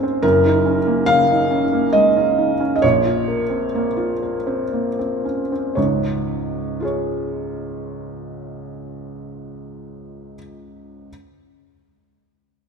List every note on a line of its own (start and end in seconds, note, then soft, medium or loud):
0.00 0.19 G#1 medium
0.00 0.19 G#2 medium
0.00 0.25 G#3 medium
0.00 0.25 A#3 soft
0.00 0.03 C4 medium
0.00 0.23 C4 medium
0.00 0.25 C#4 soft
0.00 0.25 D#4 medium
0.00 0.26 G#4 medium
0.22 2.78 F#1 medium
0.22 2.79 F#2 medium
0.22 1.09 A#4 loud
0.45 0.79 D#4 medium
0.66 1.00 C#4 medium
0.87 1.22 A#3 medium
1.06 1.43 C#3 medium
1.06 1.94 F5 loud
1.30 1.65 D#4 medium
1.50 1.85 C#4 medium
1.73 2.08 A#3 medium
1.93 2.16 G#3 soft
1.93 2.74 D#5 medium
2.17 2.52 C#4 medium
2.38 2.60 D#4 soft
2.60 2.82 C#4 medium
2.76 2.83 D#5 medium
2.82 5.73 A#1 medium
2.82 5.73 A#2 medium
2.82 5.23 C#5 medium
3.06 3.41 F4 medium
3.28 3.64 A#4 medium
3.50 3.88 C4 medium
3.75 4.12 A#3 medium
3.97 4.36 F4 medium
4.23 4.62 A#4 medium
4.47 4.87 C4 medium
4.73 4.98 A#3 soft
4.99 5.41 C4 soft
5.25 5.51 C#4 soft
5.52 5.77 C4 soft
5.75 10.33 C#2 medium
5.75 10.33 G#2 medium
5.75 6.83 C#5 medium
6.80 10.34 F4 soft
6.80 10.35 G#4 soft
6.85 10.36 C#5 soft